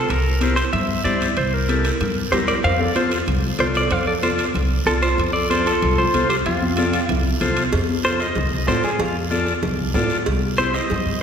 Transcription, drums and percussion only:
0.09 high timbale, long guiro
0.41 high conga, high timbale, short guiro
0.57 high timbale, short guiro
0.73 low conga, high timbale, long guiro
1.05 high conga, high timbale, short guiro
1.21 high timbale, short guiro
1.37 high timbale, long guiro
1.68 high conga, high timbale, short guiro
1.84 high timbale, short guiro
2.00 low conga, high timbale, long guiro
2.32 high conga, low conga, high timbale, low timbale, short guiro
2.47 high timbale, short guiro
2.63 high timbale, long guiro
2.80 high conga
2.95 high conga, high timbale, short guiro
3.11 high timbale, short guiro
3.26 low conga, high timbale, long guiro
3.58 high conga, high timbale, short guiro
3.74 high timbale, short guiro
3.90 low conga, high timbale, long guiro
4.23 high conga, high timbale, short guiro
4.38 high timbale, short guiro
4.54 low conga, high timbale, long guiro
4.86 high conga, high timbale, short guiro
5.02 high timbale, short guiro
5.18 high timbale, long guiro
5.50 high conga, high timbale, short guiro
5.66 high timbale, short guiro
5.82 low conga, high timbale, long guiro
6.14 high conga, high timbale, short guiro
6.30 high timbale, short guiro
6.46 low conga, high timbale, long guiro
6.62 high conga
6.77 high conga, high timbale, short guiro
6.93 high timbale, short guiro
7.09 low conga, high timbale, long guiro
7.41 high conga, low conga, high timbale, short guiro
7.57 high timbale, short guiro
7.73 cowbell, long guiro
7.89 high conga
8.04 high conga, short guiro
8.20 short guiro
8.35 cowbell, low conga, long guiro
8.67 high conga, low timbale, short guiro
8.83 short guiro
9.00 cowbell, long guiro
9.31 high conga, short guiro
9.46 short guiro
9.63 cowbell, low conga, long guiro
9.94 high conga, low timbale, short guiro
10.10 short guiro
10.26 cowbell, long guiro
10.58 high conga, short guiro
10.74 short guiro
10.89 cowbell, low conga, long guiro

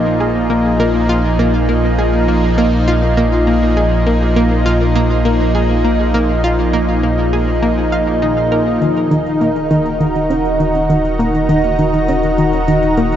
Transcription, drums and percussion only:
8.82 closed hi-hat
8.97 closed hi-hat, high tom
9.11 closed hi-hat
9.26 closed hi-hat
9.41 closed hi-hat, high tom
9.56 closed hi-hat
9.71 closed hi-hat
9.86 closed hi-hat
10.01 closed hi-hat
10.16 closed hi-hat, high tom
10.30 closed hi-hat
10.45 closed hi-hat, high tom
10.60 closed hi-hat
10.75 closed hi-hat
10.90 closed hi-hat, high tom
11.05 closed hi-hat
11.20 closed hi-hat, high tom
11.35 closed hi-hat
11.49 closed hi-hat
11.64 closed hi-hat, high tom
11.79 closed hi-hat
11.94 closed hi-hat, high tom
12.08 closed hi-hat
12.23 closed hi-hat
12.38 closed hi-hat, high tom
12.53 closed hi-hat
12.68 closed hi-hat, high tom
12.83 closed hi-hat
12.97 closed hi-hat
13.12 closed hi-hat, high tom

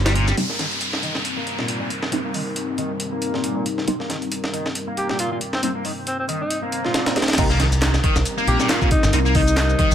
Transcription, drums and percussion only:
0.06 snare, closed hi-hat, shaker
0.15 closed hi-hat
0.28 snare, shaker
0.37 closed hi-hat
0.50 snare
0.59 snare, closed hi-hat
0.71 closed hi-hat
0.81 closed hi-hat
0.93 snare
1.03 closed hi-hat
1.15 snare
1.25 closed hi-hat
1.47 closed hi-hat
1.59 snare
1.68 closed hi-hat
1.90 closed hi-hat
2.02 snare
2.12 closed hi-hat
2.34 open hi-hat
2.56 closed hi-hat
2.78 closed hi-hat
3.00 closed hi-hat
3.22 closed hi-hat
3.34 snare
3.44 closed hi-hat
3.66 closed hi-hat
3.78 snare
3.88 closed hi-hat
4.00 snare
4.10 snare, closed hi-hat
4.22 closed hi-hat
4.32 closed hi-hat
4.44 snare
4.54 closed hi-hat
4.66 snare
4.75 closed hi-hat
4.97 closed hi-hat
5.09 snare
5.19 closed hi-hat
5.41 closed hi-hat
5.53 snare
5.63 closed hi-hat
5.85 open hi-hat
6.07 closed hi-hat
6.29 closed hi-hat
6.50 closed hi-hat
6.72 closed hi-hat
6.85 snare
6.94 snare, closed hi-hat
7.06 snare, closed hi-hat
7.16 snare, closed hi-hat
7.22 snare, closed hi-hat
7.28 snare, closed hi-hat
7.33 snare, closed hi-hat
7.38 kick, closed hi-hat, crash, shaker
7.50 snare, shaker
7.60 snare, closed hi-hat
7.72 closed hi-hat, shaker
7.82 snare, clap, closed hi-hat, shaker
7.94 snare, shaker
8.04 kick, closed hi-hat
8.16 snare, shaker
8.25 closed hi-hat, shaker
8.38 shaker
8.47 closed hi-hat
8.60 snare, shaker
8.69 snare, clap, closed hi-hat, shaker
8.82 kick, shaker
8.91 kick, closed hi-hat
9.03 snare, shaker
9.13 closed hi-hat, shaker
9.26 shaker
9.35 kick, open hi-hat
9.48 shaker
9.57 snare, clap, closed hi-hat, shaker
9.69 shaker
9.79 kick, closed hi-hat
9.91 shaker

